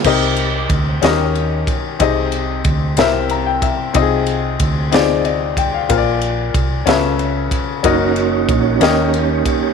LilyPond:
<<
  \new Staff \with { instrumentName = "Upright piano" } { \time 6/8 \key ees \major \tempo 4. = 62 << { r2. | r2 bes''16 g''16 e''8 | r2 ees''8 g''16 f''16~ | f''16 r2 r8. |
r2. | } \\ { <c' ees' g' bes' ees''>4 r8 <des' ees' ges' g' bes' ees''>4 r8 | <c' ees' g' aes' ees''>4 r8 <c' e' g' bes' e''>4 r8 | <c' ees' f' g' aes' ees''>4 r8 <c' ees' f' aes' d''>4 r8 | <f' bes' c'' d''>4 r8 <des' f' a' ces'' e''>4 r8 |
<des' ees' ges' bes' ees''>4 r8 <des' ees' g' bes' ees''>4 r8 | } >> }
  \new Staff \with { instrumentName = "Upright piano" } { \clef bass \time 6/8 \key ees \major c4. ees4. | c4. c4. | c4. r4. | bes,4. des4. |
r4. ees4. | }
  \new Staff \with { instrumentName = "Tonewheel organ" } { \time 6/8 \key ees \major r2. | r2. | r2. | r2. |
<bes des' ees' ges' des''>4. <bes des' ees' f' g' des''>4. | }
  \new Staff \with { instrumentName = "Fingered electric bass" } { \clef bass \time 6/8 \key ees \major c,4 d,8 ees,4 r8 | c,4 d,8 c,4 r8 | c,4 d,2 | bes,,4 c,8 des,4 r8 |
ges,,4 bes,,8 ees,4 r8 | }
  \new DrumStaff \with { instrumentName = "Drums" } \drummode { \time 6/8 <cymc bd>8 rb8 <bd rb>8 <rb sn>8 rb8 <bd rb>8 | <bd rb>8 rb8 <bd rb>8 <rb sn>8 rb8 <bd rb>8 | <bd rb>8 rb8 <bd rb>8 <rb sn>8 rb8 <bd rb>8 | <bd rb>8 rb8 <bd rb>8 <rb sn>8 rb8 <bd rb>8 |
<bd rb>8 rb8 <bd rb>8 <rb sn>8 rb8 <bd rb>8 | }
>>